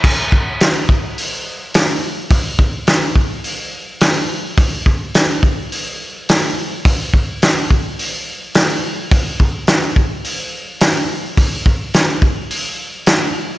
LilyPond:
\new DrumStaff \with { instrumentName = "Drums" } \drummode { \time 4/4 \tempo 4 = 106 <cymc bd>8 bd8 <hho sn>8 bd8 hho4 <hho sn>4 | <hho bd>8 bd8 <hho sn>8 bd8 hho4 <hho sn>4 | <hho bd>8 bd8 <hho sn>8 bd8 hho4 <hho sn>4 | <hho bd>8 bd8 <hho sn>8 bd8 hho4 <hho sn>4 |
<hho bd>8 bd8 <hho sn>8 bd8 hho4 <hho sn>4 | <hho bd>8 bd8 <hho sn>8 bd8 hho4 <hho sn>4 | }